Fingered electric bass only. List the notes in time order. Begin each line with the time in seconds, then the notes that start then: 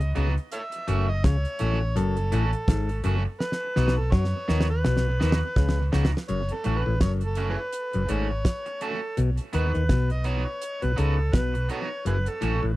Already playing: C#2
0.17 C#2
0.89 F#1
1.25 C#2
1.61 A1
1.97 F#1
2.33 A1
2.69 G#1
3.05 F#1
3.77 B1
4.13 F#2
4.50 D#2
4.86 B1
5.22 D#2
5.57 C#2
5.94 C#2
6.30 F#1
6.66 A1
6.87 A1
7.02 F#1
7.96 F#1
8.10 G#1
9.18 B1
9.55 D#2
9.76 D#2
9.90 B1
10.84 B1
10.99 C#2
11.34 B1
12.07 F#1
12.43 A1
12.64 A1